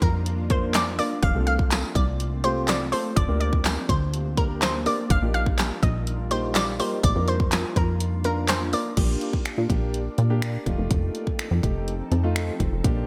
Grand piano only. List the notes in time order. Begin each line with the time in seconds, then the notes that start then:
0.50 A#3 D4 F4 A#4
0.99 A#3 D4 F4 A#4
1.35 A3 C4 F4 A4
2.44 A3 C4 F4 G4
2.92 A3 C4 F4 A4
3.28 A#3 D4 G4 A#4
4.37 A#3 D4 G4 A#4
4.86 A#3 D4 G4 A#4
5.22 A#3 D#4 F4 G4
6.31 A#3 D#4 F4 G4
6.79 A#3 D#4 F4 G4
7.16 A#3 D4 F4 A#4
8.24 A#3 D4 F4 A#4
8.73 A#3 D4 F4 A#4
8.97 A#3 D4 G4
9.69 A#3 D4 G4
10.30 A#3 D4 G4
10.66 A3 D#4 F4
11.63 A3 D#4 G4
12.23 A3 D#4 F4
12.84 A#3 D4 G4